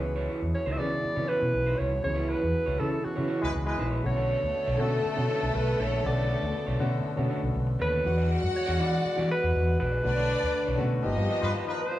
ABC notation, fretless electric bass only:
X:1
M:4/4
L:1/16
Q:1/4=120
K:Bdor
V:1 name="Fretless electric bass" clef=bass
C,,3 E,, z C,, C,2 z C, z B,, B,,,2 =C,,2 | C,,3 E,, z C,, C,2 z C, z C,, C,,2 ^A,,,2 | B,,,3 D,, z B,,, B,,2 z B,, z B,,, B,,,2 ^A,,,2 | B,,,3 D,, z B,,, B,,2 z B,, z B,,, B,,,2 ^D,,2 |
E,,3 F,, z E,, E,2 z E, z E,, E,,2 ^A,,,2 | B,,,3 D,, z B,,, B,,2 =G,,, =G,, z G,, z4 |]